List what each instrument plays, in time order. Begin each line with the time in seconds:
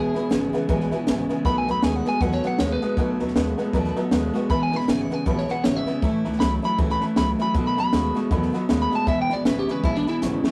Already playing: upright bass E1, clean electric guitar E2 B2 G#4, steel-string acoustic guitar E2 B2 E3 G#3 B3 E4
0.14 upright bass G#1, clean electric guitar E2 B2, steel-string acoustic guitar E3 G#3 B3 E4, honky-tonk piano B4 E5 B5, snare
0.30 upright bass G#1, clean electric guitar E2 C#3, steel-string acoustic guitar E3 G#3 B3 E4, honky-tonk piano B4 E5 F#5, snare, hi-hat pedal
0.53 clean electric guitar E2 C#3, steel-string acoustic guitar E3 G#3 B3 E4, honky-tonk piano B4 E5 F#5, muted upright bass stroke, snare
0.69 upright bass A1, steel-string acoustic guitar E2 B2 E3 G#3 B3 E4, clean electric guitar E2 B2, honky-tonk piano B4 E5 G#5, kick, snare
0.80 snare
0.91 clean electric guitar E2 B2, steel-string acoustic guitar E3 G#3 B3 E4, honky-tonk piano B4 E5 G#5, muted upright bass stroke, snare
1.07 upright bass G#1, clean electric guitar E2 C#3, steel-string acoustic guitar E3 G#3 B3 E4, honky-tonk piano B4 E5 G#5, snare, hi-hat pedal
1.29 clean electric guitar E2 C#3, steel-string acoustic guitar E3 G#3 B3 E4, honky-tonk piano B4 E5 G#5, muted upright bass stroke, snare
1.45 upright bass B1, clean electric guitar B2 F#3 B5, steel-string acoustic guitar B2 D#3 A3 B3 F#4, honky-tonk piano B4 D#5 F#5, kick, snare
1.58 clean electric guitar G#5
1.67 upright bass D#2, clean electric guitar B2 F#3 B5, steel-string acoustic guitar A3 B3 F#4, honky-tonk piano B4 D#5 F#5, snare
1.83 upright bass D#2, clean electric guitar B2 G#3 G#5, steel-string acoustic guitar D#3 A3 B3 F#4, honky-tonk piano B4 D#5 A5, snare, hi-hat pedal
1.96 clean electric guitar F#5
2.05 clean electric guitar B2 G#3 G#5, steel-string acoustic guitar A3 B3 F#4, honky-tonk piano B4 D#5 G#5, snare
2.21 upright bass E2, clean electric guitar B2 F#3 F#5, steel-string acoustic guitar B2 D#3 A3 B3 F#4, honky-tonk piano B4 D#5 G#5, kick, snare
2.32 clean electric guitar C#5, snare
2.43 clean electric guitar B2 F#3, steel-string acoustic guitar A3 B3 F#4, honky-tonk piano B4 D#5 F#5, muted upright bass stroke, snare
2.47 clean electric guitar F#5
2.59 upright bass D#2, clean electric guitar B2 G#3 C#5, steel-string acoustic guitar D#3 A3 B3 F#4, honky-tonk piano B4 D#5 F#5, snare, hi-hat pedal
2.72 clean electric guitar B4
2.81 clean electric guitar B2 G#3, steel-string acoustic guitar A3 B3 F#4, honky-tonk piano B4 D#5 F#5, snare
2.97 steel-string acoustic guitar B2 D#3 A3 B3 F#4, clean electric guitar B2 F#3, honky-tonk piano B4 D#5 F#5, kick, snare
3.19 upright bass D#2, clean electric guitar B2 F#3, steel-string acoustic guitar A3 B3 F#4, honky-tonk piano B4 D#5 A5, snare
3.28 snare
3.35 upright bass D#2, clean electric guitar B2 G#3, steel-string acoustic guitar D#3 A3 B3 F#4, honky-tonk piano B4 D#5 F#5, snare, hi-hat pedal
3.57 clean electric guitar B2 G#3, steel-string acoustic guitar A3 B3 F#4, honky-tonk piano B4 D#5 F#5, snare
3.73 upright bass E2, clean electric guitar B2 F#3, steel-string acoustic guitar B2 D#3 A3 B3 F#4, honky-tonk piano B4 D#5 A5, kick, snare
3.84 snare
3.96 clean electric guitar B2 F#3, steel-string acoustic guitar A3 B3 F#4, honky-tonk piano B4 D#5 E5 A5, muted upright bass stroke, snare
4.04 honky-tonk piano F#5
4.11 upright bass D#2, clean electric guitar B2 G#3, steel-string acoustic guitar D#3 A3 B3 F#4, honky-tonk piano B4 D#5 F#5 A5, snare, hi-hat pedal
4.33 clean electric guitar B2 G#3, steel-string acoustic guitar A3 B3 F#4, honky-tonk piano B4 D#5 F#5 C#6, snare
4.49 upright bass E1, clean electric guitar E2 B2 B5, steel-string acoustic guitar E2 B2 E3 G#3 B3 E4, honky-tonk piano B4 E5 G#5, kick, snare
4.63 clean electric guitar G#5
4.71 upright bass G#1, clean electric guitar E2 B2, steel-string acoustic guitar E3 G#3 B3 E4, honky-tonk piano B4 E5 G#5, snare
4.76 clean electric guitar B5, snare
4.87 upright bass G#1, clean electric guitar E2 C#3 G#5, steel-string acoustic guitar E3 G#3 B3 E4, honky-tonk piano B4 E5 G#5, snare, hi-hat pedal
5.01 clean electric guitar F#5
5.10 clean electric guitar E2 C#3 G#5, steel-string acoustic guitar E3 G#3 B3 E4, honky-tonk piano B4 E5 F#5, muted upright bass stroke, snare
5.26 upright bass A1, clean electric guitar E2 B2 F#5, steel-string acoustic guitar E2 B2 E3 G#3 B3 E4, honky-tonk piano B4 E5 B5, kick, snare
5.38 clean electric guitar C#5, snare
5.48 clean electric guitar E2 B2 F#5, steel-string acoustic guitar E3 G#3 B3 E4, honky-tonk piano B4 E5 G#5, muted upright bass stroke, snare
5.64 upright bass G#1, clean electric guitar E2 C#3 C#5, steel-string acoustic guitar E3 G#3 B3 E4, honky-tonk piano B4 E5 F#5, snare, hi-hat pedal
5.76 clean electric guitar E5
5.86 clean electric guitar E2 C#3, steel-string acoustic guitar E3 G#3 B3 E4, honky-tonk piano B4 E5 F#5, muted upright bass stroke, snare
6.02 upright bass A1, steel-string acoustic guitar A2 E3 A3 C#4 E4, clean electric guitar A2 E3, honky-tonk piano C#5 E5 A5, kick, snare
6.24 upright bass C#2, clean electric guitar A2 E3, steel-string acoustic guitar A3 C#4 E4, honky-tonk piano C#5 E5 A5, snare
6.33 snare
6.40 upright bass C#2, clean electric guitar A2 F#3 B5, steel-string acoustic guitar E3 A3 C#4 E4, honky-tonk piano C#5 E5 A5, snare, hi-hat pedal
6.62 clean electric guitar A2 F#3 B5, steel-string acoustic guitar A3 C#4 E4, honky-tonk piano C#5 E5 A5, snare
6.78 upright bass C#2, steel-string acoustic guitar A2 E3 A3 C#4 E4, clean electric guitar A2 E3, honky-tonk piano C#5 E5 A5, kick, snare
6.90 clean electric guitar B5, snare
7.00 clean electric guitar A2 E3, steel-string acoustic guitar A3 C#4 E4, honky-tonk piano C#5 E5 A5, muted upright bass stroke, snare
7.16 upright bass C#2, clean electric guitar A2 F#3 B5, steel-string acoustic guitar E3 A3 C#4 E4, honky-tonk piano C#5 E5 A5, snare, hi-hat pedal
7.38 clean electric guitar A2 F#3 B5, steel-string acoustic guitar A3 C#4 E4, honky-tonk piano C#5 E5 G#5, snare
7.54 upright bass B1, steel-string acoustic guitar B2 D#3 A3 B3 F#4, clean electric guitar B2 F#3, honky-tonk piano D#5 F#5 B5, kick, snare
7.67 clean electric guitar B5
7.77 upright bass D#2, clean electric guitar B2 F#3 B5, steel-string acoustic guitar A3 B3 F#4, honky-tonk piano D#5 F#5 B5, snare
7.92 upright bass D#2, clean electric guitar B2 G#3, steel-string acoustic guitar D#3 A3 B3 F#4, honky-tonk piano D#5 F#5 C#6, snare, hi-hat pedal
8.14 clean electric guitar B2 G#3, steel-string acoustic guitar A3 B3 F#4, honky-tonk piano D#5 F#5 C#6, snare
8.31 upright bass E2, steel-string acoustic guitar B2 D#3 A3 B3 F#4, clean electric guitar B2 F#3, honky-tonk piano D#5 F#5 B5, kick, snare
8.42 snare
8.53 clean electric guitar B2 F#3, steel-string acoustic guitar A3 B3 F#4, honky-tonk piano D#5 F#5 B5, snare
8.69 upright bass D#2, clean electric guitar B2 G#3, steel-string acoustic guitar D#3 A3 B3 F#4, honky-tonk piano D#5 F#5 B5, snare, hi-hat pedal
8.82 clean electric guitar B5
8.91 clean electric guitar B2 G#3, steel-string acoustic guitar A3 B3 F#4, honky-tonk piano D#5 F#5 B5, snare
8.95 clean electric guitar A5
9.06 upright bass E1, steel-string acoustic guitar E2 B2 E3 G#3 B3 E4, clean electric guitar E2 B2 E5, honky-tonk piano E5 G#5 B5, kick, snare
9.22 clean electric guitar G5
9.29 upright bass G#1, clean electric guitar E2 B2 D5, steel-string acoustic guitar E3 G#3 B3 E4, honky-tonk piano E5 G#5 B5, snare
9.45 upright bass G#1, clean electric guitar E2 C#3 B4, steel-string acoustic guitar E3 G#3 B3 E4, honky-tonk piano E5 G#5 C#6, snare, hi-hat pedal
9.59 clean electric guitar G4
9.67 clean electric guitar E2 C#3, steel-string acoustic guitar E3 G#3 B3 E4, honky-tonk piano E5 G#5 C#6, muted upright bass stroke, snare
9.71 clean electric guitar B4
9.83 upright bass A1, steel-string acoustic guitar E2 B2 E3 G#3 B3 E4, clean electric guitar E2 B2 E4, honky-tonk piano E5 G#5 B5, kick, snare
9.95 clean electric guitar D4, snare
10.06 clean electric guitar E2 B2 E4, steel-string acoustic guitar E3 G#3 B3 E4, honky-tonk piano E5 G#5 B5, muted upright bass stroke, snare
10.22 upright bass G#1, clean electric guitar E2 C#3, steel-string acoustic guitar E3 G#3 B3 E4, honky-tonk piano E5 G#5 C#6, snare, hi-hat pedal
10.44 clean electric guitar E2 C#3, steel-string acoustic guitar E3 G#3 B3 E4, honky-tonk piano E5 G#5 C#6, muted upright bass stroke, snare